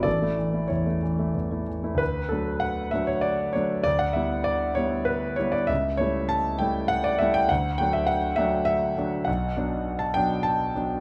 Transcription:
<<
  \new Staff \with { instrumentName = "Grand piano" } { \time 3/4 \key d \major \tempo 4 = 99 <a' d''>4 <e' cis''>4 r4 | b'8 a'8 fis''8 e''16 cis''16 d''8 cis''8 | d''16 fis''16 e''8 d''8 cis''8 b'8 cis''16 d''16 | e''8 cis''8 a''8 g''8 fis''16 d''16 e''16 g''16 |
fis''8 g''16 e''16 fis''8 e''8 e''4 | fis''4~ fis''16 a''16 g''8 a''4 | }
  \new Staff \with { instrumentName = "Grand piano" } { \time 3/4 \key d \major a,,16 <a e'>16 e16 <a e'>16 e,16 <a e'>16 e16 <a e'>16 e,16 <a e'>16 e16 <a e'>16 | d,8 <fis a d'>4 <fis a d'>4 <fis a d'>8 | d,8 <g b e'>4 <g b e'>4 <g b e'>8 | cis,8 <g a e'>4 <g a e'>4 <g a e'>8 |
d,8 <fis a d'>4 <fis a d'>4 <fis a d'>8 | b,,8 <fis b d'>4 <fis b d'>4 <fis b d'>8 | }
>>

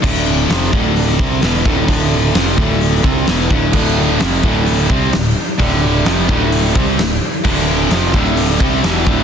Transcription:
<<
  \new Staff \with { instrumentName = "Tonewheel organ" } { \time 4/4 \key d \minor \tempo 4 = 130 << { <d' d''>1~ | <d' d''>1~ | <d' d''>1~ | <d' d''>1~ |
<d' d''>1 | } \\ { a'1~ | a'1 | g'1~ | g'1~ |
g'1 | } >> }
  \new Staff \with { instrumentName = "Distorted electric guitar" } { \clef bass \time 4/4 \key d \minor r1 | r1 | <d, a, d>4 <f, c f>8 <d, a, d>4 <c g c'>8 <d, a,>8 r8 | <d, a, d>4 <f, c f>8 <d, a, d>4 <c g c'>8 <d, a,>8 r8 |
<d, a, d>4 <f, c f>8 <d, a, d>4 <c g c'>8 <e, b, e>8 <d, a, d>8 | }
  \new Staff \with { instrumentName = "Overdriven electric guitar" } { \clef bass \time 4/4 \key d \minor <d, a, d>4 <f, c f>8 <d, a, d>4 <c g c'>8 <e, b, e>8 <d, a, d>8 | <d, a, d>4 <f, c f>8 <d, a, d>4 <c g c'>8 <e, b, e>8 <d, a, d>8 | <d, a, d>4 <f, c f>8 <d, a, d>4 <c g c'>8 <d, a,>8 r8 | <d, a, d>4 <f, c f>8 <d, a, d>4 <c g c'>8 <d, a,>8 r8 |
<d, a, d>4 <f, c f>8 <d, a, d>4 <c g c'>8 <e, b, e>8 <d, a, d>8 | }
  \new Staff \with { instrumentName = "Overdriven electric guitar" } { \clef bass \time 4/4 \key d \minor <d, a, d>4 <f, c f>8 <d, a, d>4 <c g c'>8 <e, b, e>8 <d, a, d>8 | <d, a, d>4 <f, c f>8 <d, a, d>4 <c g c'>8 <e, b, e>8 <d, a, d>8 | <d, a, d>4 <f, c f>8 <d, a, d>4 <c g c'>8 <d, a,>8 r8 | <d, a, d>4 <f, c f>8 <d, a, d>4 <c g c'>8 <d, a,>8 r8 |
<d, a, d>4 <f, c f>8 <d, a, d>4 <c g c'>8 <e, b, e>8 <d, a, d>8 | }
  \new Staff \with { instrumentName = "Picked electric bass" } { \clef bass \time 4/4 \key d \minor d,,4 f,,8 d,,4 c,8 e,,8 d,,8 | d,,4 f,,8 d,,4 c,8 e,,8 d,,8 | d,,4 f,,8 d,,4 c,8 d,,8 r8 | d,,4 f,,8 d,,4 c,8 d,,8 r8 |
d,,4 f,,8 d,,4 c,8 e,,8 d,,8 | }
  \new DrumStaff \with { instrumentName = "Drums" } \drummode { \time 4/4 <cymc bd>4 <hho sn>8 bd8 hho8 bd8 <hho sn>8 bd8 | <hho bd>4 <hho sn>8 bd8 hho8 bd8 <hho sn>8 bd8 | <cymc bd>4 <hho sn>8 bd8 hho8 bd8 <hho sn>4 | <hho bd>4 <hho sn>8 bd8 hho8 bd8 <hho sn>4 |
<cymc bd>4 <hho sn>8 bd8 hho8 bd8 <hho sn>8 bd8 | }
>>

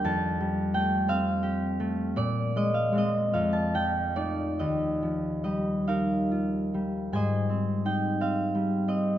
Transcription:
<<
  \new Staff \with { instrumentName = "Harp" } { \time 6/8 \key ees \lydian \tempo 4. = 53 << { <g'' a''>4 g''8 f''4. | d''8 ees''16 f''16 ees''8 f''16 a''16 g''8 d''8 | ees''4 ees''8 f''4. | \key aes \major aes''4 g''8 f''4 ees''8 | } \\ { r2. | r2. | r4. bes'4. | <c'' ees''>2. | } >> }
  \new Staff \with { instrumentName = "Harp" } { \clef bass \time 6/8 \key ees \lydian <f, g g'>8 g8 a8 c'8 g'8 a8 | bes,8 aes8 <aes c'>8 f,8 f8 <a ees'>8 | ees,8 f8 g8 ees'8 f'8 g8 | \key aes \major aes,8 c'8 ees'8 c'8 g8 c'8 | }
>>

